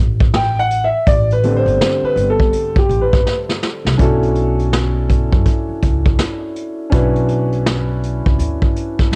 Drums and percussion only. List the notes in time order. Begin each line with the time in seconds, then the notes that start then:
0.20 kick
0.34 snare, closed hi-hat
0.71 closed hi-hat
1.07 kick, closed hi-hat
1.30 closed hi-hat
1.43 closed hi-hat
1.67 closed hi-hat
1.81 snare, closed hi-hat
2.17 closed hi-hat
2.40 kick
2.53 closed hi-hat
2.76 kick
2.90 closed hi-hat
3.13 kick, snare
3.27 snare
3.49 snare
3.63 snare
3.87 snare
3.99 kick, closed hi-hat
4.23 closed hi-hat
4.35 closed hi-hat
4.59 closed hi-hat
4.73 snare, closed hi-hat
5.10 kick, closed hi-hat
5.32 kick
5.46 kick, closed hi-hat
5.82 kick, closed hi-hat
6.06 kick
6.19 snare, closed hi-hat
6.56 closed hi-hat
6.92 kick, closed hi-hat
7.16 closed hi-hat
7.28 closed hi-hat
7.52 closed hi-hat
7.66 snare, closed hi-hat
8.03 closed hi-hat
8.26 kick
8.39 closed hi-hat
8.62 kick
8.76 closed hi-hat
8.99 kick, snare